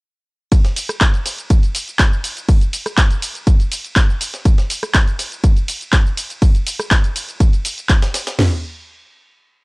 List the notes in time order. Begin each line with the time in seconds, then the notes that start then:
0.52 kick, closed hi-hat, ride, shaker
0.65 snare, closed hi-hat, shaker
0.76 closed hi-hat, open hi-hat, ride, shaker
0.89 cross-stick, closed hi-hat, shaker
1.01 kick, snare, clap, closed hi-hat, ride, shaker
1.14 closed hi-hat, shaker
1.26 snare, closed hi-hat, open hi-hat, ride, shaker
1.38 closed hi-hat, shaker
1.50 kick, closed hi-hat, ride, shaker
1.63 closed hi-hat, shaker
1.75 closed hi-hat, open hi-hat, ride, shaker
1.88 closed hi-hat, shaker
1.99 kick, snare, clap, closed hi-hat, ride, shaker
2.13 shaker
2.24 closed hi-hat, open hi-hat, ride, shaker
2.37 closed hi-hat, shaker
2.49 kick, closed hi-hat, open hi-hat, ride, shaker
2.61 closed hi-hat, shaker
2.73 closed hi-hat, open hi-hat, ride, shaker
2.86 cross-stick, closed hi-hat, shaker
2.98 kick, snare, clap, closed hi-hat, ride, shaker
3.11 closed hi-hat, shaker
3.22 closed hi-hat, open hi-hat, ride, shaker
3.35 closed hi-hat, shaker
3.47 kick, closed hi-hat, ride, shaker
3.60 closed hi-hat, shaker
3.71 closed hi-hat, open hi-hat, ride, shaker
3.84 closed hi-hat, shaker
3.96 kick, snare, clap, closed hi-hat, ride, shaker
4.10 shaker
4.21 closed hi-hat, open hi-hat, ride, shaker
4.34 snare, closed hi-hat, shaker
4.45 kick, closed hi-hat, ride, shaker
4.58 snare, closed hi-hat, shaker
4.70 closed hi-hat, open hi-hat, ride, shaker
4.83 cross-stick, closed hi-hat, shaker
4.94 kick, snare, clap, closed hi-hat, ride, shaker
5.07 closed hi-hat, shaker
5.19 snare, closed hi-hat, open hi-hat, ride, shaker
5.32 closed hi-hat, shaker
5.44 kick, closed hi-hat, ride, shaker
5.57 closed hi-hat, shaker
5.68 closed hi-hat, open hi-hat, ride, shaker
5.81 closed hi-hat, shaker
5.93 kick, snare, clap, closed hi-hat, ride, shaker
6.06 shaker
6.17 closed hi-hat, open hi-hat, ride, shaker
6.30 closed hi-hat, shaker
6.42 kick, closed hi-hat, open hi-hat, ride, shaker
6.55 closed hi-hat, shaker
6.67 closed hi-hat, open hi-hat, ride, shaker
6.79 cross-stick, closed hi-hat, shaker
6.91 kick, snare, clap, closed hi-hat, ride, shaker
7.04 closed hi-hat, shaker
7.16 closed hi-hat, open hi-hat, ride, shaker
7.29 closed hi-hat, shaker
7.40 kick, closed hi-hat, ride, shaker
7.53 closed hi-hat, shaker
7.65 closed hi-hat, open hi-hat, ride, shaker
7.78 closed hi-hat, shaker
7.89 kick, snare, clap, closed hi-hat, ride, shaker
8.02 snare, closed hi-hat, shaker
8.14 snare, closed hi-hat, open hi-hat, ride, shaker
8.27 snare, closed hi-hat, shaker
8.39 snare, floor tom, crash